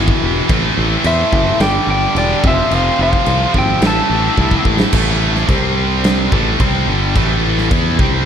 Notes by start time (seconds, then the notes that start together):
Already playing: G#1 E2 B2 E3 G#3 B3 E4
0.08 kick
0.21 E1 E3 G#3 B3 E4
0.49 A1 A2 E3 A3 C4 E4, kick, crash
0.77 A1 A2 E3 A3 C4 E4
1.04 E2 A2 E3 A3 C4 E4 C5 E5, crash
1.32 F#1 A2 E3 A3 C4 E4, kick
1.60 G1 G2 D3 G3 B3 D4 D5 G5, snare, crash
1.87 G1 G2 D3 G3 B3 D4 G5
1.92 D5
2.15 E1 G2 D3 G3 B3 D5, crash
2.19 D4 G4
2.43 F1 F2 C3 F3 A3 C4, kick
2.47 F4 C5 E5
2.71 F1 F3 A3 C4 F4, crash
2.75 C5 F5
2.99 F1 F3 A3 C4 F4 C5 F5
3.13 kick
3.26 C2 F3 A3 C4 F4, crash
3.54 G#1 F3 A3 C4 F4, kick
3.58 E5 G5
3.81 A1 A2 E3 A3 C4, snare, crash
3.85 E4 E5 A5
4.09 A1 A2 E3 A3 E4
4.14 C4
4.37 C2 A2 E3 A3 C4, kick
4.42 E4
4.51 kick
4.65 A1 A2 E3 A3 C4 E4, kick
4.80 snare
4.93 A1 A2 E3 A3, kick, crash
5.35 snare
5.49 C2 C3 G3 C4, kick, crash
6.04 snare, crash
6.32 A1 A2 E3 A3, kick
6.60 C2 C3 G3 C4, kick, crash
6.88 G1 G2 D3 G3
7.16 A1 A2 E3 A3, kick, crash
7.58 snare
7.71 E2 E3 B3 E4, kick, crash
7.99 C2 C3 G3 C4, kick